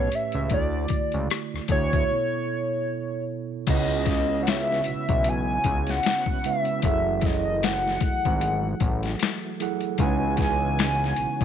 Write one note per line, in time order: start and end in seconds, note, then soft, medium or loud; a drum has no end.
0.00 0.41 A2 medium
0.00 0.41 A3 medium
0.00 0.42 C#4 medium
0.00 0.42 G4 medium
0.00 0.42 B4 medium
0.00 0.16 C#5 medium
0.12 0.53 E5 loud
0.12 closed hi-hat medium
0.32 0.49 C#2 medium
0.32 closed hi-hat soft
0.50 0.86 D2 medium
0.50 1.54 D3 medium
0.50 1.54 A3 medium
0.50 1.54 E4 medium
0.50 kick medium
0.50 closed hi-hat medium
0.54 1.55 F#4 medium
0.54 1.28 D5 medium
0.54 1.55 D5 medium
0.88 kick medium
0.88 closed hi-hat medium
1.12 1.29 C#2 medium
1.12 closed hi-hat soft
1.30 cross-stick loud
1.30 closed hi-hat medium
1.54 1.60 D2 soft
1.54 cross-stick soft
1.68 2.05 D2 medium
1.68 1.89 D3 medium
1.68 1.90 A3 medium
1.68 1.90 E4 medium
1.68 3.25 C#5 loud
1.68 kick medium
1.68 closed hi-hat medium
1.72 1.90 F#4 medium
1.72 1.90 C#5 medium
1.93 2.10 D3 medium
1.93 2.10 A3 medium
1.93 2.10 E4 medium
1.93 2.10 F#4 medium
1.93 2.11 E5 medium
1.93 kick medium
1.93 closed hi-hat soft
2.10 3.43 B2 medium
2.10 3.44 B3 medium
2.10 3.44 E4 medium
2.10 3.44 A4 medium
2.10 3.44 C#5 medium
3.67 4.82 C#2 loud
3.67 5.01 C#3 medium
3.67 6.81 C#3 medium
3.67 5.01 G#3 medium
3.67 6.81 B3 medium
3.67 6.81 C#4 medium
3.67 5.02 C#4 medium
3.67 6.81 E4 medium
3.67 5.02 E4 medium
3.67 6.80 F#4 medium
3.67 5.02 B4 medium
3.67 4.44 D#5 medium
3.67 5.02 F#5 medium
3.67 kick loud
3.67 closed hi-hat medium
3.67 crash medium
4.06 kick medium
4.06 snare soft
4.06 closed hi-hat medium
4.43 4.51 F#5 medium
4.47 5.30 E5 medium
4.47 snare loud
4.47 closed hi-hat medium
4.72 snare soft
4.84 4.96 B1 soft
4.84 closed hi-hat medium
5.09 5.59 B1 medium
5.09 kick medium
5.09 closed hi-hat soft
5.24 closed hi-hat medium
5.29 5.92 G#5 loud
5.64 6.00 C#2 medium
5.64 kick medium
5.64 closed hi-hat medium
5.87 6.48 F#5 loud
5.87 snare soft
5.87 closed hi-hat soft
6.03 snare loud
6.03 closed hi-hat medium
6.26 kick medium
6.44 6.78 C#3 medium
6.44 6.78 G#3 medium
6.44 6.78 C#4 medium
6.44 6.78 E4 medium
6.44 6.79 B4 medium
6.44 6.79 E5 medium
6.44 7.19 E5 loud
6.44 closed hi-hat medium
6.65 closed hi-hat soft
6.82 7.98 F#1 loud
6.82 11.45 E3 medium
6.82 9.96 F#3 medium
6.82 8.17 F#3 medium
6.82 9.96 A3 medium
6.82 8.17 E4 medium
6.82 8.18 G#4 medium
6.82 8.18 A4 medium
6.82 8.18 F#5 medium
6.82 kick loud
6.82 closed hi-hat medium
7.19 7.27 E5 medium
7.19 kick medium
7.19 closed hi-hat medium
7.25 7.66 D#5 medium
7.25 snare soft
7.63 9.21 F#5 medium
7.63 snare loud
7.63 closed hi-hat medium
7.88 snare soft
8.00 8.11 G#1 medium
8.00 kick loud
8.00 closed hi-hat medium
8.25 8.75 G#1 medium
8.25 kick medium
8.25 closed hi-hat soft
8.41 closed hi-hat medium
8.80 9.16 A1 medium
8.80 kick medium
8.80 closed hi-hat medium
9.03 snare soft
9.03 closed hi-hat soft
9.19 snare loud
9.19 closed hi-hat medium
9.60 9.94 F#3 medium
9.60 9.94 E4 medium
9.60 9.94 G#4 medium
9.60 9.95 A4 medium
9.60 9.95 F#5 loud
9.60 closed hi-hat medium
9.81 closed hi-hat soft
9.98 11.13 C#2 loud
9.98 11.45 C#3 medium
9.98 11.33 C#3 medium
9.98 11.33 G#3 medium
9.98 11.45 B3 medium
9.98 11.45 C#4 medium
9.98 11.33 D#4 medium
9.98 11.33 E4 medium
9.98 11.45 F#4 medium
9.98 11.34 B4 medium
9.98 11.45 G#5 loud
9.98 kick loud
9.98 closed hi-hat medium
10.02 11.34 F#5 medium
10.37 kick medium
10.37 snare soft
10.37 closed hi-hat medium
10.79 snare loud
10.79 closed hi-hat medium
11.04 snare soft
11.16 11.27 B1 medium
11.16 closed hi-hat medium
11.41 kick medium
11.41 closed hi-hat soft